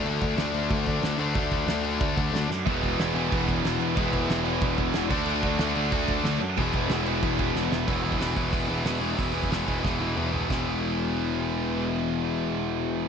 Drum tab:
CC |x-x-x-x-x-x-x-x-|x-x-x-x-x-x-x---|x-x-x-x-x-x-x-x-|x-x-x-x-x-x-x-x-|
HH |----------------|----------------|----------------|----------------|
SD |----o-------o---|----o-------o-o-|----o-------o---|----o-------o---|
T1 |----------------|----------------|----------------|----------------|
T2 |----------------|----------------|----------------|----------------|
FT |----------------|----------------|----------------|----------------|
BD |--o-----o-o-----|o-o-----o-o-----|o-o-----o-o-----|o-o-----o-o---o-|

CC |x-x-x-x-x-x-x-x-|x-x-x-x-x-x-----|x---------------|----------------|
HH |----------------|----------------|----o---o---o---|o---o-----------|
SD |----o-------o---|----o-------o-o-|----o-------o---|----o---o-------|
T1 |----------------|----------------|----------------|----------o-----|
T2 |----------------|----------------|----------------|------------o---|
FT |----------------|----------------|----------------|--------------o-|
BD |--o-----o-o-----|o-o-----o-o-----|o--o--o-o-------|o--o--o-o-------|

CC |x---------------|----------------|
HH |----------------|----------------|
SD |o---------------|----------------|
T1 |----------------|----------------|
T2 |----------------|----------------|
FT |----------------|----------------|
BD |o---------------|----------------|